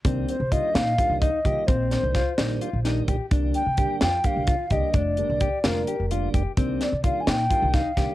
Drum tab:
HH |xxxxxxx|xxxxxxx|xxxxxxx|xxxxxxx|
SD |---o---|-ooo-o-|---o---|---o---|
BD |o-o-ooo|o-o---o|o-o-ooo|o-o---o|

HH |xxxxxxx|
SD |-o-o-oo|
BD |o-o-ooo|